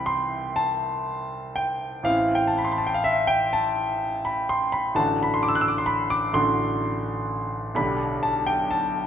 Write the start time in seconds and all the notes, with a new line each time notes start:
Already playing: C2 E3 C4 E4 G5 B5
0.06 C6
0.56 A5
1.56 G5
2.03 A1 E3 C4 E4 F5
2.35 G5
2.47 A5
2.58 B5
2.65 C6
2.72 B5
2.78 A5
2.87 G5
2.94 F5
3.04 E5
3.27 G5
3.53 A5
4.25 B5
4.49 C6
4.72 B5
4.94 A1 D3 D4 F#4 A5
5.23 B5
5.34 C6
5.43 D6
5.48 E6
5.55 F#6
5.61 E6
5.68 D6
5.78 C6
5.86 B5
6.10 D6
6.33 A1 D3 D4 F#4 C6
7.75 B1 D3 D4 G4 B5
8.23 A5
8.47 G5
8.71 A5